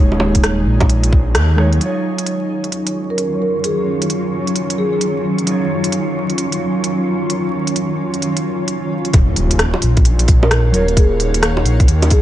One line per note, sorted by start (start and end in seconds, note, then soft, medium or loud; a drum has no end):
0.00 0.65 D#1 medium
0.00 1.08 G#3 loud
0.00 1.10 D#4 medium
0.00 1.77 D#4 medium
0.00 1.77 G#4 medium
0.00 1.12 C#5 loud
0.00 1.77 C#5 medium
0.12 low bongo soft
0.20 low bongo medium
0.35 kick medium
0.35 closed hi-hat medium
0.44 cross-stick loud
0.44 closed hi-hat medium
0.66 1.37 A#1 medium
0.80 kick loud
0.80 closed hi-hat soft
0.80 low bongo medium
0.89 closed hi-hat medium
1.03 closed hi-hat medium
1.13 kick loud
1.35 1.80 D#2 medium
1.35 cross-stick loud
1.35 closed hi-hat medium
1.56 1.68 G#3 medium
1.56 1.68 D#4 medium
1.56 1.69 C#5 medium
1.56 cross-stick medium
1.73 closed hi-hat soft
1.78 9.10 D#3 medium
1.78 5.43 F#3 medium
1.78 9.10 F#3 medium
1.78 9.14 C#4 medium
1.78 9.10 C#4 medium
1.78 5.45 D#4 medium
1.78 9.10 F4 medium
1.78 9.14 C#5 medium
1.78 closed hi-hat medium
1.83 5.46 F4 medium
1.83 5.48 C#5 medium
2.18 closed hi-hat medium
2.26 closed hi-hat medium
2.64 closed hi-hat soft
2.72 closed hi-hat soft
2.87 closed hi-hat medium
3.10 3.34 A#4 medium
3.18 closed hi-hat medium
3.42 3.63 A#4 medium
3.64 4.10 G#4 medium
3.64 closed hi-hat soft
4.02 closed hi-hat medium
4.10 closed hi-hat medium
4.47 closed hi-hat soft
4.56 closed hi-hat soft
4.70 closed hi-hat medium
4.78 4.88 G#4 medium
4.93 4.98 G#4 medium
5.01 closed hi-hat medium
5.38 closed hi-hat soft
5.44 9.10 F#3 medium
5.44 9.11 D#4 medium
5.44 closed hi-hat medium
5.49 9.13 F4 medium
5.49 9.14 C#5 medium
5.84 closed hi-hat medium
5.92 closed hi-hat soft
6.30 closed hi-hat soft
6.38 closed hi-hat medium
6.52 closed hi-hat soft
6.84 closed hi-hat soft
7.30 closed hi-hat soft
7.67 closed hi-hat soft
7.76 closed hi-hat soft
8.14 closed hi-hat soft
8.22 closed hi-hat soft
8.37 closed hi-hat soft
8.68 closed hi-hat soft
9.05 closed hi-hat soft
9.13 9.72 D#1 loud
9.13 12.22 D#4 medium
9.13 12.22 C#5 medium
9.13 12.22 F5 medium
9.13 12.22 F#5 medium
9.13 kick loud
9.13 closed hi-hat medium
9.13 impact medium
9.36 open hi-hat medium
9.51 closed hi-hat medium
9.59 cross-stick loud
9.59 closed hi-hat medium
9.74 low bongo medium
9.82 10.27 A#1 medium
9.82 open hi-hat medium
9.97 kick loud
9.97 closed hi-hat soft
10.05 closed hi-hat medium
10.19 closed hi-hat medium
10.28 10.73 A#1 medium
10.28 kick loud
10.28 open hi-hat medium
10.43 10.66 A#4 medium
10.43 low bongo medium
10.51 cross-stick loud
10.51 closed hi-hat medium
10.72 11.64 D#1 medium
10.72 10.84 F#3 medium
10.72 10.85 F4 medium
10.72 10.95 A#4 medium
10.72 open hi-hat medium
10.76 10.86 C#5 medium
10.88 closed hi-hat soft
10.97 11.43 G#4 medium
10.97 kick loud
10.97 closed hi-hat medium
11.20 open hi-hat medium
11.34 closed hi-hat medium
11.43 cross-stick loud
11.43 closed hi-hat medium
11.57 low bongo medium
11.65 11.87 A#1 medium
11.65 open hi-hat medium
11.80 kick loud
11.80 open hi-hat soft
11.88 12.13 D#2 medium
11.88 closed hi-hat medium
12.02 closed hi-hat medium
12.02 low bongo medium
12.10 12.22 A#1 medium
12.10 12.21 G#4 medium
12.10 kick loud
12.10 open hi-hat medium